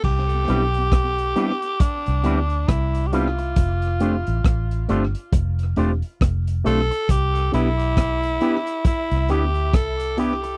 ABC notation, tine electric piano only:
X:1
M:4/4
L:1/8
Q:"Swing 16ths" 1/4=68
K:C
V:1 name="Tine electric piano"
z [B,DEG] z [B,DEG] z [B,DEG] z [B,DEG] | z [A,CDG] z [A,CDG] z [A,CDG] z [A,CDG] | z [B,DEG] z [B,DEG] z [B,DEG] z [B,DEG] |]